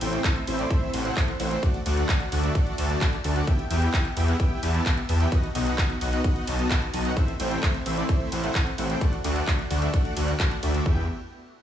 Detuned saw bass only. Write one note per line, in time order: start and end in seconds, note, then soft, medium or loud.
0.01 0.18 A1 loud
0.47 0.64 A1 medium
0.94 1.10 A1 medium
1.40 1.57 A1 medium
1.86 2.03 D2 loud
2.32 2.49 D2 loud
2.78 2.95 D2 medium
3.24 3.41 D2 medium
3.70 3.87 E2 loud
4.17 4.34 E2 loud
4.63 4.80 E2 medium
5.09 5.26 E2 medium
5.55 5.72 B1 loud
6.01 6.18 B1 loud
6.47 6.64 B1 medium
6.94 7.10 B1 medium
7.40 7.57 A1 loud
7.86 8.03 A1 loud
8.32 8.49 A1 medium
8.78 8.95 A1 medium
9.24 9.41 D2 loud
9.71 9.87 D2 loud
10.17 10.34 D2 medium
10.63 10.80 D2 medium
10.86 11.07 E2 loud